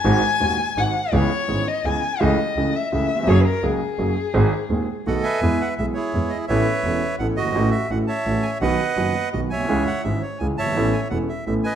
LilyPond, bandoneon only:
\new Staff \with { instrumentName = "Bandoneon" } { \time 3/4 \key gis \phrygian \tempo 4 = 169 << { r2. | r2. | r2. | r2. |
r2 fis''8 gis''8~ | \key e \major gis''8 fis''8 e''8 cis''4 dis''8 | e''2 fis''8 dis''8~ | dis''8 e''8 fis''8 a''4 gis''8 |
fis''2 dis''8 gis''8~ | gis''8 fis''8 e''8 cis''8 gis''8 a''8~ | a''8 gis''8 fis''8 e''8 e''8 gis''8 | } \\ { r2. | r2. | r2. | r2. |
r2 <a' dis''>8 <b' e''>8~ | <b' e''>4 r8 <e' gis'>4. | <b' cis''>2 r8 fis'8~ | fis'4 r8 <cis'' e''>4. |
<b' dis''>2 r8 <cis'' e''>8~ | <cis'' e''>4 r4. <cis'' e''>8~ | <cis'' e''>4 r4. <b' dis''>8 | } >> }